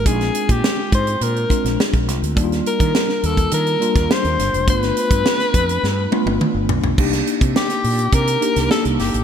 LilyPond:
<<
  \new Staff \with { instrumentName = "Alto saxophone" } { \time 4/4 \key ees \lydian \tempo 4 = 104 aes'8. g'8. c''8 bes'4 r4 | r8 bes'4 a'8 bes'4 c''4 | b'2.~ b'8 r8 | r4 g'4 bes'4 a'8 g'8 | }
  \new Staff \with { instrumentName = "Tine electric piano" } { \time 4/4 \key ees \lydian <aes c' d' ees' f'>4. r4 <aes c' d' f'>4 r8 | <g bes d' ees' f'>4. r4 <g bes d' f'>4 r8 | <a b d' f'>4. r4 <a b d' f'>4 r8 | <bes d' ees' g'>4. r4 <bes d' ees' g'>8 <bes d' ees' g'>4 | }
  \new Staff \with { instrumentName = "Fretless electric bass" } { \clef bass \time 4/4 \key ees \lydian bes,,8 r16 bes,16 r8 aes,8 bes,8 r16 bes,,16 r16 bes,,16 c,16 d,16 | ees,8 r16 ees16 r8 ees,8 ees8 r16 ees,16 r16 ees,16 g,,16 f,,16 | g,,8 r16 g,16 r8 f,8 g,8 r16 g,,16 r16 g,,16 b,,16 b,,16 | c,8 r16 c16 r8 bes,8 c8 r16 c,16 r16 c,16 g,,16 a,,16 | }
  \new DrumStaff \with { instrumentName = "Drums" } \drummode { \time 4/4 <hh bd>16 <hh sn>16 hh16 <hh bd>16 sn8 <hh bd>16 hh16 hh16 hh16 <hh bd>16 <hh sn>16 sn16 <hh bd>16 <hh sn>16 hh16 | <hh bd>16 <hh sn>16 hh16 <hh bd>16 sn16 sn16 hh16 <hh bd>16 hh16 hh16 hh16 <hh bd sn>16 sn16 hh16 <hh sn>16 hh16 | <hh bd>16 <hh sn>16 hh16 <hh bd>16 sn16 <hh sn>16 <hh bd>16 hh16 sn8 tommh16 tommh16 toml8 tomfh16 tomfh16 | <cymc bd>16 <hh sn>16 hh16 <hh bd>16 sn16 <hh sn>16 hho16 hh16 <hh bd>16 hh16 hh16 <hh sn>16 sn16 hh16 <hho sn>16 hh16 | }
>>